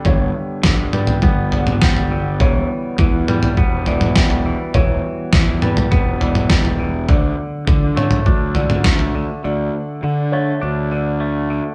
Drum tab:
SD |----o-------o---|------------o---|----o-------o---|------------o---|
T2 |------ooo--o----|------oo---o----|------ooo--o----|------oo---o----|
FT |o---o--o--o--o--|o---o--o--o--o--|o---o--o--o--o--|o---o--o--o--o--|
BD |o---o---o---o---|o---o---o---o---|o---o---o---o---|o---o---o---o---|

SD |----------------|
T2 |----------------|
FT |----------------|
BD |----------------|